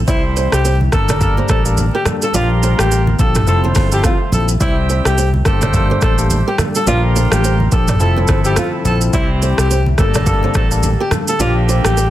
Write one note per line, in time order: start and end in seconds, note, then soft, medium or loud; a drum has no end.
0.00 0.91 C3 medium
0.00 0.91 E4 medium
0.07 0.47 C2 loud
0.07 0.92 E3 medium
0.07 0.60 G3 loud
0.07 0.63 G3 medium
0.07 0.91 G3 medium
0.07 0.60 C4 medium
0.07 0.60 E4 medium
0.07 0.63 E4 medium
0.07 0.22 E4 loud
0.07 0.21 G4 medium
0.07 0.63 C5 medium
0.07 0.61 C5 loud
0.07 0.20 D5 loud
0.07 kick loud
0.07 low conga medium
0.07 shaker medium
0.37 0.49 A4 medium
0.37 0.49 C5 medium
0.37 shaker medium
0.52 0.88 C2 medium
0.52 0.77 G4 medium
0.52 cross-stick loud
0.52 shaker medium
0.65 0.78 G4 medium
0.65 0.77 C5 medium
0.65 shaker medium
0.81 high conga medium
0.92 1.42 G1 loud
0.92 3.45 D3 medium
0.92 1.14 G3 medium
0.92 2.03 G3 medium
0.92 2.33 G3 medium
0.92 1.14 A#3 medium
0.92 3.45 A#3 medium
0.92 2.04 D4 medium
0.92 1.14 D4 medium
0.92 2.33 G4 medium
0.92 1.06 G4 medium
0.92 1.14 A4 medium
0.92 1.17 A4 medium
0.92 2.03 A#4 loud
0.92 1.05 A#4 medium
0.92 kick medium
0.92 cross-stick medium
0.92 shaker soft
1.09 1.19 A#4 medium
1.09 1.18 D5 medium
1.09 cross-stick loud
1.09 mid tom medium
1.09 shaker medium
1.20 1.61 G3 loud
1.20 1.62 A#3 medium
1.20 1.62 D4 medium
1.20 1.35 A4 medium
1.20 1.62 A#4 loud
1.20 kick medium
1.20 low conga medium
1.20 shaker medium
1.37 1.47 A4 medium
1.37 1.47 C5 medium
1.37 high conga medium
1.48 1.88 A1 medium
1.48 1.64 A4 medium
1.48 1.62 A4 medium
1.48 1.62 C5 medium
1.48 kick loud
1.48 cross-stick loud
1.48 shaker medium
1.65 1.84 G3 medium
1.65 1.84 A#3 medium
1.65 1.84 D4 medium
1.65 1.85 A4 medium
1.65 shaker medium
1.77 high conga medium
1.77 low conga medium
1.77 shaker medium
1.95 2.05 G4 medium
1.95 2.04 G4 medium
1.95 2.03 A#4 medium
2.05 2.27 G3 medium
2.05 2.27 A#3 medium
2.05 2.27 D4 medium
2.05 2.27 A4 medium
2.05 cross-stick loud
2.05 high conga medium
2.05 low conga medium
2.05 shaker medium
2.22 2.32 F4 medium
2.22 2.32 A4 medium
2.22 2.33 A4 medium
2.22 shaker medium
2.34 2.73 A#1 loud
2.34 2.87 F3 loud
2.34 3.46 G3 medium
2.34 3.17 G3 medium
2.34 2.87 A#3 medium
2.34 2.87 D4 medium
2.34 3.46 F4 medium
2.34 3.17 F4 medium
2.34 2.49 F4 loud
2.34 2.87 G4 loud
2.34 3.17 A#4 medium
2.34 2.47 A#4 medium
2.34 2.47 D5 loud
2.34 low conga medium
2.34 shaker medium
2.63 2.76 A4 medium
2.63 2.75 C5 medium
2.63 shaker medium
2.79 3.14 A1 loud
2.79 3.04 G4 medium
2.79 cross-stick loud
2.79 shaker medium
2.91 3.04 G4 medium
2.91 3.03 A#4 medium
2.91 shaker medium
3.07 high conga medium
3.19 3.44 A#1 medium
3.19 3.40 F3 medium
3.19 3.40 A#3 medium
3.19 3.40 D4 medium
3.19 3.32 F4 medium
3.19 3.41 G4 medium
3.19 3.32 A4 medium
3.19 3.44 A4 medium
3.19 kick medium
3.19 shaker medium
3.35 3.45 E4 medium
3.35 3.45 G4 medium
3.35 cross-stick medium
3.35 mid tom medium
3.35 shaker medium
3.47 3.72 F1 loud
3.47 4.59 C3 medium
3.47 3.88 F3 loud
3.47 4.59 F3 medium
3.47 4.59 A3 medium
3.47 4.31 A3 medium
3.47 3.88 C4 medium
3.47 3.88 E4 medium
3.47 4.31 F4 medium
3.47 3.88 A4 loud
3.47 3.62 A4 medium
3.47 4.31 C5 medium
3.47 4.59 E5 medium
3.47 low conga medium
3.47 shaker medium
3.64 3.74 F4 medium
3.64 3.73 A4 medium
3.64 high conga medium
3.75 4.00 G1 medium
3.75 3.89 F4 medium
3.75 3.88 A4 medium
3.75 kick medium
3.75 cross-stick loud
3.75 open hi-hat soft
3.75 shaker medium
3.92 4.11 F3 medium
3.92 4.11 C4 medium
3.92 4.11 E4 medium
3.92 4.03 G4 medium
3.92 4.11 A4 medium
3.92 shaker medium
4.04 4.26 C4 medium
4.04 4.26 F4 medium
4.04 4.19 F4 medium
4.04 kick medium
4.04 cross-stick medium
4.04 high conga medium
4.04 low conga medium
4.04 shaker medium
4.32 4.57 A#1 loud
4.32 4.54 F3 medium
4.32 4.54 C4 medium
4.32 4.54 E4 medium
4.32 4.54 A4 medium
4.32 4.47 A4 medium
4.32 high conga medium
4.32 low conga medium
4.32 shaker medium
4.49 shaker medium
4.60 5.00 C2 loud
4.60 5.45 C3 medium
4.60 5.45 E3 medium
4.60 5.13 G3 loud
4.60 5.44 G3 medium
4.60 5.13 C4 medium
4.60 5.16 C4 medium
4.60 5.45 E4 medium
4.60 5.13 E4 medium
4.60 4.75 E4 loud
4.60 5.16 G4 medium
4.60 4.74 G4 medium
4.60 5.13 C5 loud
4.60 4.73 D5 loud
4.60 5.16 E5 medium
4.60 kick loud
4.60 low conga medium
4.60 shaker medium
4.90 5.02 A4 medium
4.90 5.02 C5 medium
4.90 shaker medium
5.05 5.40 C2 medium
5.05 5.30 G4 medium
5.05 cross-stick loud
5.05 shaker medium
5.18 5.30 G4 medium
5.18 5.30 C5 medium
5.18 shaker medium
5.34 high conga medium
5.45 5.95 G1 loud
5.45 7.98 D3 medium
5.45 5.67 G3 medium
5.45 6.86 G3 medium
5.45 6.56 A3 medium
5.45 5.67 A#3 medium
5.45 5.67 D4 medium
5.45 6.56 G4 medium
5.45 6.86 G4 medium
5.45 5.59 G4 medium
5.45 6.86 A4 medium
5.45 5.67 A4 medium
5.45 5.70 A4 medium
5.45 5.58 A#4 medium
5.45 6.56 C5 loud
5.45 kick medium
5.45 cross-stick medium
5.45 shaker soft
5.62 5.72 A#4 medium
5.62 5.71 D5 medium
5.62 cross-stick medium
5.62 mid tom medium
5.62 shaker medium
5.73 6.14 G3 loud
5.73 6.14 A#3 medium
5.73 6.15 D4 medium
5.73 6.15 A4 loud
5.73 5.88 A4 medium
5.73 kick medium
5.73 low conga medium
5.73 shaker medium
5.90 6.00 A4 medium
5.90 6.00 C5 medium
5.90 high conga medium
6.01 6.41 A1 medium
6.01 6.17 A4 medium
6.01 6.15 A4 medium
6.01 6.15 C5 medium
6.01 kick loud
6.01 cross-stick loud
6.01 shaker medium
6.18 6.37 G3 medium
6.18 6.37 A#3 medium
6.18 6.37 D4 medium
6.18 6.37 A4 medium
6.18 shaker medium
6.30 high conga medium
6.30 low conga medium
6.30 shaker medium
6.48 6.58 G4 medium
6.48 6.57 G4 medium
6.48 6.56 A#4 medium
6.58 6.80 G3 medium
6.58 6.80 A#3 medium
6.58 6.80 D4 medium
6.58 6.80 A4 medium
6.58 cross-stick loud
6.58 high conga medium
6.58 low conga medium
6.58 shaker medium
6.75 6.85 F4 medium
6.75 6.84 A4 medium
6.75 6.86 A4 medium
6.75 shaker medium
6.87 7.26 A#1 loud
6.87 7.40 F3 loud
6.87 7.70 G3 medium
6.87 7.99 G3 medium
6.87 7.40 A#3 medium
6.87 7.99 A#3 medium
6.87 7.40 D4 medium
6.87 7.70 F4 medium
6.87 7.99 F4 medium
6.87 7.01 F4 loud
6.87 7.40 G4 loud
6.87 7.70 A#4 loud
6.87 7.00 A#4 medium
6.87 7.00 D5 loud
6.87 low conga medium
6.87 shaker medium
7.16 7.29 A4 medium
7.16 7.28 C5 medium
7.16 shaker medium
7.32 7.67 A1 loud
7.32 7.56 G4 medium
7.32 cross-stick loud
7.32 shaker medium
7.44 7.57 G4 medium
7.44 7.56 C5 medium
7.44 shaker medium
7.60 high conga medium
7.71 7.97 A#1 medium
7.71 7.93 F3 medium
7.71 7.93 A#3 medium
7.71 7.93 D4 medium
7.71 7.93 G4 medium
7.71 7.85 G4 medium
7.71 7.96 A4 medium
7.71 7.85 A#4 medium
7.71 kick medium
7.71 shaker medium
7.88 7.98 A#4 medium
7.88 7.98 D5 medium
7.88 cross-stick medium
7.88 mid tom medium
7.88 shaker medium
8.00 8.25 F1 loud
8.00 9.96 C3 medium
8.00 8.41 F3 loud
8.00 8.83 F3 medium
8.00 9.12 F3 medium
8.00 9.12 A3 medium
8.00 8.41 C4 medium
8.00 8.83 E4 medium
8.00 9.96 E4 medium
8.00 8.41 E4 medium
8.00 8.83 A4 medium
8.00 8.41 A4 loud
8.00 8.15 A4 medium
8.00 low conga medium
8.00 shaker medium
8.17 8.26 A4 medium
8.17 8.26 C5 medium
8.17 high conga medium
8.28 8.53 G1 loud
8.28 8.42 A4 medium
8.28 8.41 C5 medium
8.28 kick loud
8.28 cross-stick loud
8.28 shaker medium
8.45 8.82 F3 medium
8.45 8.82 C4 medium
8.45 8.82 E4 medium
8.45 8.56 G4 medium
8.45 8.82 A4 medium
8.45 shaker medium
8.56 8.71 F4 medium
8.56 8.79 F4 medium
8.56 8.78 A4 medium
8.56 cross-stick loud
8.56 high conga medium
8.56 low conga medium
8.56 shaker medium
8.85 9.10 A#1 loud
8.85 9.11 F3 medium
8.85 9.11 C4 medium
8.85 9.11 E4 medium
8.85 9.12 A4 medium
8.85 9.00 A4 medium
8.85 high conga medium
8.85 low conga medium
8.85 shaker medium
9.01 shaker medium
9.13 9.52 C2 loud
9.13 9.97 E3 medium
9.13 9.69 E3 medium
9.13 9.66 G3 loud
9.13 9.97 G3 medium
9.13 9.66 C4 medium
9.13 9.69 C4 medium
9.13 9.66 E4 medium
9.13 9.28 E4 loud
9.13 9.69 G4 medium
9.13 9.27 G4 medium
9.13 9.66 C5 loud
9.13 9.26 D5 loud
9.13 kick loud
9.13 low conga medium
9.13 shaker medium
9.42 9.55 A4 medium
9.42 9.54 C5 medium
9.42 shaker medium
9.58 9.93 C2 medium
9.58 9.83 G4 medium
9.58 cross-stick loud
9.58 shaker medium
9.71 9.83 G4 medium
9.71 9.83 C5 medium
9.71 shaker medium
9.86 high conga medium
9.98 10.48 G1 loud
9.98 12.10 D3 medium
9.98 11.09 D3 medium
9.98 10.19 G3 medium
9.98 10.20 A#3 medium
9.98 12.10 A#3 medium
9.98 11.09 A#3 medium
9.98 10.20 D4 medium
9.98 11.38 G4 medium
9.98 10.12 G4 medium
9.98 11.38 A4 medium
9.98 11.09 A4 loud
9.98 10.20 A4 medium
9.98 10.23 A4 medium
9.98 10.11 A#4 medium
9.98 kick medium
9.98 cross-stick medium
9.98 shaker soft
10.14 10.25 A#4 medium
10.14 10.24 D5 medium
10.14 cross-stick medium
10.14 mid tom medium
10.14 shaker medium
10.26 10.67 G3 loud
10.26 10.67 A#3 medium
10.26 10.67 D4 medium
10.26 10.67 A4 loud
10.26 10.41 A4 medium
10.26 kick medium
10.26 low conga medium
10.26 shaker medium
10.43 10.53 A4 medium
10.43 10.52 C5 medium
10.43 high conga medium
10.54 10.94 A1 loud
10.54 10.69 A4 medium
10.54 10.68 A4 medium
10.54 10.68 C5 medium
10.54 kick medium
10.54 cross-stick loud
10.54 shaker soft
10.71 10.90 G3 medium
10.71 10.90 A#3 medium
10.71 10.90 D4 medium
10.71 10.90 A4 medium
10.71 shaker medium
10.83 high conga medium
10.83 low conga medium
10.83 shaker medium
11.00 11.10 G4 medium
11.00 11.09 G4 medium
11.00 11.09 A#4 medium
11.11 11.33 G3 medium
11.11 11.33 A#3 medium
11.11 11.33 D4 medium
11.11 11.33 A4 medium
11.11 cross-stick loud
11.11 high conga medium
11.11 low conga medium
11.11 shaker medium
11.28 11.38 F4 medium
11.28 11.37 A4 medium
11.28 11.39 A4 medium
11.28 shaker medium
11.39 11.79 A#1 loud
11.39 12.10 D3 medium
11.39 11.92 F3 medium
11.39 12.10 G3 medium
11.39 11.92 A#3 medium
11.39 12.10 A#3 medium
11.39 11.93 D4 medium
11.39 12.10 F4 medium
11.39 11.54 F4 loud
11.39 12.10 G4 medium
11.39 11.93 G4 loud
11.39 11.53 A#4 medium
11.39 11.53 D5 loud
11.39 low conga medium
11.39 shaker medium
11.69 11.81 A4 medium
11.69 11.81 C5 medium
11.69 shaker medium
11.85 12.10 A1 loud
11.85 12.09 G4 medium
11.85 cross-stick loud
11.85 shaker medium
11.97 12.10 G4 medium
11.97 12.09 A#4 medium
11.97 shaker medium